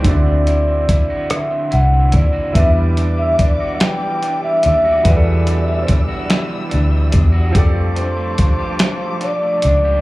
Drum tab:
HH |xxxxxx|xxxxxx|xxxxxx|xxxxxx|
SD |---r--|---o--|---o--|---o--|
BD |o-o--o|o-o---|o-o--o|o-o---|